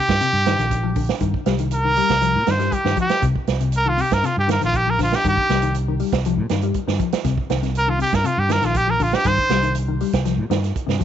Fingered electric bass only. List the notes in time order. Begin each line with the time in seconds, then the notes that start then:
0.09 G2
0.33 G2
0.58 A#1
1.21 G2
1.46 C2
2.09 C2
2.35 A#2
2.47 G2
2.85 G2
3.10 muted fingered electric bass stroke
3.23 C2
3.48 C2
4.11 G2
4.37 G2
4.63 A#1
5.24 G2
5.50 C2
6.13 C2
6.37 A#2
6.50 G2
6.88 G2
7.13 muted fingered electric bass stroke
7.25 C2
7.50 C2
8.13 G2
8.38 G2
8.62 A#1
9.25 G2
9.49 C2
10.14 C2
10.38 A#2
10.50 G2
10.88 G2